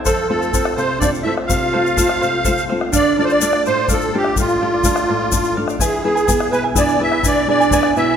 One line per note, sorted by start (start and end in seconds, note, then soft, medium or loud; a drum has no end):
0.05 0.52 F2 medium
0.05 0.27 A4 medium
0.05 0.28 A4 medium
0.05 0.28 C5 medium
0.05 0.29 F5 medium
0.05 bombo low medium
0.05 shaker medium
0.29 0.53 A3 medium
0.29 0.53 C4 soft
0.29 0.53 F4 medium
0.29 0.41 A4 medium
0.29 0.74 A4 medium
0.29 0.40 C5 medium
0.29 0.39 F5 medium
0.40 0.53 C5 soft
0.40 0.53 F5 soft
0.40 shaker soft
0.53 0.92 A3 soft
0.53 0.92 C4 soft
0.53 0.92 F4 medium
0.53 0.76 A4 medium
0.53 0.77 C5 medium
0.53 0.77 F5 medium
0.53 bombo low medium
0.53 shaker medium
0.65 bombo rim medium
0.76 1.24 C3 medium
0.76 0.89 A4 soft
0.76 0.99 C5 loud
0.76 0.99 C5 medium
0.76 0.90 C5 medium
0.76 0.89 F5 medium
0.76 shaker soft
0.90 1.00 C5 soft
0.90 1.01 F5 soft
0.99 1.24 A3 soft
0.99 1.25 C4 soft
0.99 1.05 D4 medium
0.99 1.25 F4 medium
0.99 1.25 A4 medium
0.99 1.25 C5 medium
0.99 1.11 D5 medium
0.99 1.26 F5 medium
0.99 bombo low medium
0.99 shaker medium
1.15 shaker soft
1.23 1.64 A3 soft
1.23 1.64 C4 soft
1.23 1.30 E4 medium
1.23 1.65 F4 medium
1.23 1.38 A4 medium
1.23 1.36 C5 medium
1.23 1.34 E5 medium
1.27 1.36 F5 medium
1.37 1.48 C5 soft
1.37 1.49 F5 medium
1.37 bombo rim medium
1.47 1.96 C3 medium
1.47 2.64 F4 medium
1.47 1.71 A4 medium
1.47 1.72 C5 medium
1.47 2.64 F5 medium
1.47 1.73 F5 medium
1.47 bombo low medium
1.47 shaker medium
1.72 1.97 A3 medium
1.72 1.97 C4 soft
1.72 1.97 F4 medium
1.72 1.85 A4 soft
1.72 1.84 C5 medium
1.72 1.83 F5 medium
1.84 1.96 C5 soft
1.84 1.97 F5 soft
1.84 shaker soft
1.97 2.36 A3 soft
1.97 2.36 C4 soft
1.97 2.37 F4 medium
1.97 2.20 A4 medium
1.97 2.20 C5 medium
1.97 2.21 F5 medium
1.97 bombo low medium
1.97 shaker medium
2.09 bombo rim medium
2.21 2.68 C3 medium
2.21 2.33 A4 medium
2.21 2.33 C5 medium
2.21 2.33 F5 medium
2.21 shaker soft
2.34 2.44 C5 soft
2.34 2.44 F5 medium
2.44 2.70 A3 soft
2.44 2.70 C4 soft
2.44 2.71 F4 medium
2.44 2.67 A4 medium
2.44 2.68 C5 medium
2.44 2.68 F5 medium
2.44 bombo low medium
2.44 shaker medium
2.58 shaker soft
2.69 2.90 A3 soft
2.69 2.90 C4 soft
2.69 2.90 F4 medium
2.69 2.81 A4 medium
2.69 2.81 C5 medium
2.69 2.80 F5 medium
2.81 2.94 C5 soft
2.81 2.92 F5 medium
2.81 bombo rim medium
2.91 3.14 D4 medium
2.91 3.16 A4 medium
2.91 3.17 D5 medium
2.91 3.17 F5 medium
2.91 bombo low medium
2.91 shaker loud
2.95 3.41 D3 medium
2.95 3.17 D5 loud
3.17 3.40 A3 medium
3.17 3.23 D4 medium
3.17 3.41 D4 soft
3.17 3.41 F4 medium
3.17 3.29 A4 medium
3.17 3.28 D5 soft
3.17 3.25 D5 loud
3.17 3.27 F5 medium
3.23 3.29 C5 medium
3.23 3.32 C5 medium
3.28 3.62 D4 medium
3.28 3.41 D5 soft
3.28 3.63 D5 loud
3.28 3.41 F5 medium
3.28 shaker soft
3.41 3.80 A3 soft
3.41 3.80 D4 soft
3.41 3.80 F4 medium
3.41 3.64 A4 medium
3.41 3.64 D5 medium
3.41 3.65 F5 medium
3.41 shaker medium
3.53 bombo rim medium
3.65 4.12 A2 medium
3.65 3.77 A4 medium
3.65 3.88 C5 medium
3.65 3.88 C5 loud
3.65 3.77 D5 medium
3.65 3.75 F5 medium
3.65 shaker soft
3.77 3.88 D5 soft
3.77 3.88 F5 medium
3.88 4.13 A3 soft
3.88 4.14 D4 soft
3.88 4.14 F4 medium
3.88 4.12 A4 medium
3.88 4.13 D5 medium
3.88 4.13 F5 medium
3.88 bombo low medium
3.88 shaker medium
3.93 4.16 A4 medium
4.01 shaker soft
4.13 4.52 A3 soft
4.13 4.53 D4 soft
4.13 4.53 F4 medium
4.13 4.35 G4 medium
4.13 4.38 G4 medium
4.13 4.25 A4 medium
4.13 4.26 D5 medium
4.13 4.25 F5 medium
4.24 4.38 D5 soft
4.24 4.37 F5 medium
4.24 bombo rim medium
4.36 4.85 A2 medium
4.36 5.53 F4 medium
4.36 4.60 A4 medium
4.36 4.61 D5 medium
4.36 4.61 F5 medium
4.36 bombo rim soft
4.36 bombo low medium
4.36 shaker medium
4.41 5.55 F4 medium
4.49 shaker soft
4.61 4.84 A3 medium
4.61 4.85 D4 soft
4.61 4.85 F4 medium
4.61 4.73 A4 medium
4.61 4.73 D5 medium
4.61 4.71 F5 medium
4.72 4.83 D5 soft
4.72 4.84 F5 medium
4.84 5.23 A3 medium
4.84 5.24 D4 soft
4.84 5.24 F4 medium
4.84 5.07 A4 medium
4.84 5.08 D5 medium
4.84 5.08 F5 medium
4.84 bombo low medium
4.84 shaker medium
4.96 bombo rim medium
4.96 shaker soft
5.08 5.56 A2 medium
5.08 5.21 A4 medium
5.08 5.21 D5 medium
5.08 5.20 F5 medium
5.21 5.31 D5 soft
5.21 5.32 F5 medium
5.32 5.56 A3 soft
5.32 5.56 D4 soft
5.32 5.58 F4 soft
5.32 5.54 A4 medium
5.32 5.55 D5 medium
5.32 5.56 F5 medium
5.32 bombo low medium
5.32 shaker medium
5.44 bombo rim soft
5.44 shaker soft
5.55 5.76 A3 soft
5.55 5.76 D4 soft
5.55 5.77 F4 medium
5.55 5.68 A4 medium
5.55 5.69 D5 medium
5.55 5.68 F5 medium
5.68 5.81 D5 soft
5.68 5.80 F5 medium
5.68 bombo rim medium
5.68 shaker soft
5.79 6.27 E3 medium
5.79 6.03 E4 medium
5.79 6.04 G#4 medium
5.79 6.03 G#4 medium
5.79 6.04 B4 medium
5.79 6.02 E5 medium
5.79 6.04 G#5 medium
5.79 bombo low medium
5.79 shaker medium
6.04 6.27 B3 soft
6.04 6.15 E4 medium
6.04 6.27 E4 soft
6.04 6.49 G#4 medium
6.04 6.28 G#4 medium
6.04 6.14 B4 medium
6.04 6.16 E5 medium
6.04 6.14 G#5 medium
6.15 6.27 E4 soft
6.15 6.27 B4 soft
6.15 6.28 G#5 medium
6.15 shaker soft
6.27 6.66 B3 soft
6.27 6.51 E4 medium
6.27 6.67 E4 soft
6.27 6.67 G#4 medium
6.27 6.51 B4 medium
6.27 6.50 E5 medium
6.27 6.52 G#5 medium
6.27 bombo low medium
6.27 shaker medium
6.40 bombo rim medium
6.51 6.99 B2 medium
6.51 6.64 E4 medium
6.51 6.57 B4 medium
6.51 6.63 B4 medium
6.51 6.64 B4 medium
6.51 6.64 E5 medium
6.51 6.63 G#5 medium
6.51 shaker soft
6.64 6.75 E4 soft
6.64 6.75 B4 soft
6.64 6.76 G#5 soft
6.74 6.99 B3 soft
6.74 6.97 D4 medium
6.74 6.99 E4 soft
6.74 6.99 E4 medium
6.74 6.99 G#4 soft
6.74 7.00 G#4 medium
6.74 6.99 B4 medium
6.74 7.02 D5 medium
6.74 6.99 E5 medium
6.74 7.00 G#5 medium
6.74 bombo low medium
6.74 shaker medium
6.89 shaker soft
6.99 7.38 B3 soft
6.99 7.22 E4 medium
6.99 7.12 E4 medium
6.99 7.39 E4 soft
6.99 7.39 G#4 medium
6.99 7.12 B4 medium
6.99 7.12 E5 soft
6.99 7.26 E5 loud
6.99 7.11 G#5 medium
7.12 7.23 E4 soft
7.12 7.24 B4 medium
7.12 7.24 G#5 medium
7.12 bombo rim soft
7.22 7.70 B2 medium
7.22 7.45 D4 medium
7.22 7.47 E4 medium
7.22 7.47 B4 medium
7.22 7.46 E5 medium
7.22 7.47 G#5 medium
7.22 bombo low medium
7.22 shaker medium
7.27 7.48 D5 medium
7.47 7.71 B3 medium
7.47 7.93 D4 medium
7.47 7.71 E4 soft
7.47 7.60 E4 medium
7.47 7.71 G#4 medium
7.47 7.60 B4 medium
7.47 7.93 D5 loud
7.47 7.60 E5 soft
7.47 7.59 G#5 medium
7.60 7.72 E4 soft
7.60 7.71 B4 soft
7.60 7.72 G#5 medium
7.60 shaker soft
7.71 8.10 B3 medium
7.71 8.10 E4 soft
7.71 7.96 E4 medium
7.71 8.11 G#4 medium
7.71 7.96 G#4 medium
7.71 7.96 B4 medium
7.71 7.96 E5 medium
7.71 7.97 G#5 medium
7.71 bombo low medium
7.71 shaker medium
7.83 bombo rim medium
7.96 8.17 B2 medium
7.96 8.17 E4 medium
7.96 8.09 E4 medium
7.96 8.08 B4 medium
7.96 8.08 E5 medium
7.96 8.17 E5 loud
7.96 8.08 G#5 medium
7.96 shaker soft
8.09 8.17 E4 soft
8.09 8.17 B4 medium
8.09 8.17 G#5 soft